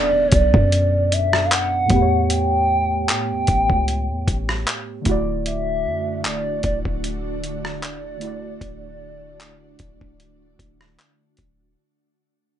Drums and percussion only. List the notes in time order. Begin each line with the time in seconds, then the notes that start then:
0.32 kick, closed hi-hat
0.54 kick
0.72 closed hi-hat
1.12 closed hi-hat
1.33 cross-stick
1.52 clap, closed hi-hat
1.90 kick, closed hi-hat
2.30 closed hi-hat
3.09 clap, closed hi-hat
3.47 kick, closed hi-hat
3.70 kick
3.88 closed hi-hat
4.28 kick, closed hi-hat
4.49 cross-stick
4.67 clap, closed hi-hat
5.05 kick, closed hi-hat
5.46 closed hi-hat
6.25 clap, closed hi-hat
6.63 kick, closed hi-hat
6.85 kick
7.04 closed hi-hat
7.44 closed hi-hat
7.65 cross-stick
7.83 clap, closed hi-hat
8.21 closed hi-hat
8.61 kick, closed hi-hat
9.40 clap, closed hi-hat
9.79 kick, closed hi-hat
10.01 kick
10.20 closed hi-hat
10.59 kick, closed hi-hat
10.81 cross-stick
10.99 clap, closed hi-hat
11.37 kick, closed hi-hat